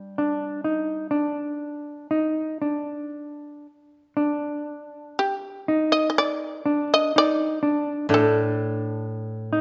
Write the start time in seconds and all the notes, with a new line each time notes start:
Already playing: G3 G4
0.18 D4
0.64 D#4
1.11 D4
2.11 D#4
2.62 D4
4.17 D4
5.19 G4
5.68 D#4
5.92 D#5
6.10 D#5
6.18 D5
6.66 D4
6.94 D#5
7.16 D#4 D5
7.63 D4
8.09 A2 D4
8.14 A4
9.53 D#4